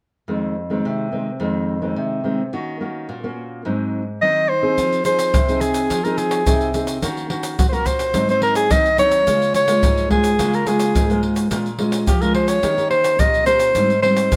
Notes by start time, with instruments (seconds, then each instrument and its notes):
0.28 nylon-string guitar F2 D#3 G#3 C4
0.70 nylon-string guitar D#3 G#3 C4
0.85 nylon-string guitar C3
1.12 nylon-string guitar D#3 G#3 C4
1.40 nylon-string guitar F2 D#3 G#3 C4
1.82 nylon-string guitar D#3 G#3 C4
1.96 nylon-string guitar C3
2.24 nylon-string guitar D#3 G#3 C4
2.53 nylon-string guitar D#3 A#3 C#4 F#4
2.80 nylon-string guitar A#3 C#4 F#4
3.09 nylon-string guitar A#2
3.24 nylon-string guitar A#3 C#4 F#4
3.65 nylon-string guitar G#2 F#3 C4 D#4
4.22 nylon-string guitar D#3 F#3 C4 D#4, soprano saxophone D#5
4.49 soprano saxophone C5
4.62 nylon-string guitar C4 D#4 G#4
4.78 nylon-string guitar F3, pandeiro, shaker, surdo
4.93 pandeiro, shaker
5.05 nylon-string guitar C4 D#4 G#4, soprano saxophone C5, pandeiro, shaker
5.19 pandeiro, shaker
5.33 nylon-string guitar C3, pandeiro, shaker, surdo
5.48 nylon-string guitar C4 D#4 G#4, pandeiro, shaker
5.61 soprano saxophone G#4, pandeiro, shaker
5.74 pandeiro, shaker
5.90 nylon-string guitar F3, pandeiro, shaker, surdo
6.04 nylon-string guitar C4 D#4 G#4, soprano saxophone A#4, pandeiro, shaker
6.18 soprano saxophone G#4, pandeiro, shaker
6.31 pandeiro, shaker
6.46 nylon-string guitar C3 C4 D#4 G#4, pandeiro, shaker, surdo
6.61 pandeiro, shaker
6.74 nylon-string guitar C4 D#4 G#4, pandeiro, shaker
6.87 pandeiro, shaker
7.02 nylon-string guitar D#3 A#3 C#4 F#4, pandeiro, shaker, surdo
7.17 pandeiro, shaker
7.30 nylon-string guitar A#3 C#4 F#4, pandeiro
7.43 pandeiro, shaker
7.59 nylon-string guitar A#2, soprano saxophone F#4, pandeiro, shaker, surdo
7.69 nylon-string guitar A#3 C#4 F#4, soprano saxophone C5
7.73 soprano saxophone A#4, pandeiro, shaker
7.86 soprano saxophone C5, pandeiro, shaker, surdo
7.99 pandeiro, shaker
8.14 nylon-string guitar G#2 F#3 C4 D#4, pandeiro, shaker, surdo
8.28 nylon-string guitar F#3 C4 D#4, soprano saxophone C5, pandeiro, shaker
8.42 soprano saxophone A#4, pandeiro
8.55 soprano saxophone G#4, pandeiro, shaker
8.70 nylon-string guitar D#3 F#3 C4 D#4, soprano saxophone D#5, pandeiro, shaker, surdo
8.85 pandeiro, shaker
8.98 nylon-string guitar F#3 C4 D#4, soprano saxophone C#5, pandeiro, shaker
9.11 pandeiro, shaker
9.27 nylon-string guitar C#3 G#3 A#3 F4, pandeiro, shaker, surdo
9.42 pandeiro, shaker
9.54 soprano saxophone C#5, pandeiro, shaker
9.68 nylon-string guitar G#3 A#3 F4, pandeiro, shaker
9.83 nylon-string guitar G#2, pandeiro, shaker, surdo
9.97 pandeiro, shaker
10.10 nylon-string guitar G#3 A#3 F4, soprano saxophone G#4, pandeiro, surdo
10.24 pandeiro, shaker
10.39 nylon-string guitar C#3 G#3 A#3 F4, pandeiro, shaker, surdo
10.53 soprano saxophone A#4, pandeiro, shaker
10.67 nylon-string guitar G#3 A#3 F4, soprano saxophone G#4, pandeiro, shaker
10.80 pandeiro, shaker
10.95 nylon-string guitar G#2, pandeiro, shaker, surdo
11.10 nylon-string guitar G#3 A#3 F4, pandeiro, shaker
11.23 pandeiro
11.36 pandeiro, shaker
11.51 nylon-string guitar A#2 G#3 C#4 F4, pandeiro, shaker, surdo
11.66 pandeiro, shaker
11.79 nylon-string guitar G#3 C#4 F4, pandeiro
11.92 pandeiro, shaker
12.07 nylon-string guitar F3, soprano saxophone G4, pandeiro, shaker, surdo
12.21 nylon-string guitar G#3 C#4 F4, soprano saxophone A#4, pandeiro, shaker
12.34 soprano saxophone C5, pandeiro
12.48 soprano saxophone C#5, pandeiro, shaker
12.63 nylon-string guitar D#3 A#3 C#4 G4, pandeiro, shaker, surdo
12.77 nylon-string guitar A#3 C#4 G4, pandeiro, shaker
12.90 soprano saxophone C5, pandeiro
13.04 pandeiro, shaker
13.19 nylon-string guitar A#2 A#3 C#4 G4, soprano saxophone D#5, pandeiro, shaker, surdo
13.34 pandeiro, shaker
13.46 nylon-string guitar A#3 C#4 G4, soprano saxophone C5, pandeiro, shaker
13.60 pandeiro, shaker
13.75 nylon-string guitar G#2 G3 C4 D#4, pandeiro, shaker, surdo
13.90 pandeiro, shaker
14.02 nylon-string guitar G3 C4 D#4, soprano saxophone C5, pandeiro
14.17 pandeiro, shaker
14.32 nylon-string guitar D#3, pandeiro, shaker, surdo